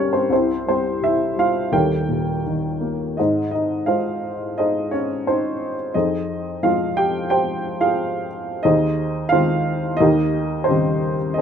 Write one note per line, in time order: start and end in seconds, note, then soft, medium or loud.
0.00 0.27 G1 medium
0.00 0.32 G2 medium
0.00 0.32 G3 medium
0.00 0.15 C4 medium
0.00 0.32 C#4 medium
0.00 0.33 G4 medium
0.00 0.33 A#4 medium
0.00 0.13 C5 medium
0.00 0.32 C#5 medium
0.13 0.30 C4 medium
0.13 0.31 C5 medium
0.30 1.68 C2 medium
0.30 0.99 C3 medium
0.30 0.65 C4 soft
0.30 0.65 E4 medium
0.30 0.65 G4 medium
0.30 0.67 C5 medium
0.66 1.34 G3 soft
0.66 1.01 C4 medium
0.66 1.04 C5 medium
1.01 1.70 C3 soft
1.01 1.36 E4 medium
1.01 1.36 E5 medium
1.36 1.71 G3 soft
1.36 1.72 F4 medium
1.36 1.75 F5 medium
1.72 3.14 D#1 medium
1.72 3.14 D#2 medium
1.72 2.43 G4 medium
1.72 2.43 A#4 medium
1.72 2.43 C#5 medium
1.72 2.43 G5 medium
2.09 3.15 A#2 soft
2.46 3.16 D#3 soft
2.81 3.16 A#3 soft
3.17 5.90 G#2 medium
3.17 3.51 D#4 soft
3.17 3.51 G#4 soft
3.17 3.51 C5 soft
3.17 3.50 D#5 medium
3.51 3.87 D#4 medium
3.51 3.88 D#5 medium
3.86 5.90 G#3 soft
3.86 4.58 D#4 soft
3.86 4.54 F4 soft
3.86 4.54 C5 medium
3.86 4.59 F5 medium
4.58 4.91 D#4 medium
4.58 4.91 G#4 soft
4.58 4.91 C5 soft
4.58 4.93 D#5 medium
4.91 5.25 C#4 medium
4.91 5.24 C#5 medium
5.27 5.75 C4 soft
5.27 5.75 D#4 medium
5.27 5.74 C5 medium
5.94 8.60 F2 medium
5.94 6.59 D#4 medium
5.94 6.59 G#4 medium
5.94 6.58 C5 soft
5.94 6.64 D#5 medium
6.63 8.61 F3 soft
6.63 8.61 G#3 soft
6.63 8.61 C4 soft
6.63 6.94 F4 medium
6.63 6.97 F5 medium
6.97 7.28 G4 medium
6.97 7.29 G5 medium
7.30 7.77 G4 medium
7.30 7.76 C5 medium
7.30 7.81 G5 medium
7.81 8.27 F4 medium
7.81 8.27 G#4 medium
7.81 8.27 F5 medium
8.63 9.96 D#2 medium
8.63 9.28 D#4 medium
8.63 9.29 G#4 medium
8.63 9.29 C5 medium
8.63 9.33 D#5 medium
9.29 9.98 D#3 soft
9.29 9.95 F4 medium
9.29 9.96 C5 medium
9.29 10.00 F5 loud
9.33 9.98 G#3 soft
9.33 9.98 C4 soft
9.97 11.34 D#2 medium
9.97 10.64 G4 medium
9.97 10.69 D#5 medium
10.01 10.65 D#4 medium
10.01 10.65 A#4 medium
10.64 11.14 C5 medium
10.68 11.37 C#3 medium
10.68 11.36 D#3 medium
10.68 11.36 G3 soft
10.68 11.17 C4 medium
10.68 11.17 G4 medium
11.34 11.41 D#5 medium
11.38 11.41 C5 medium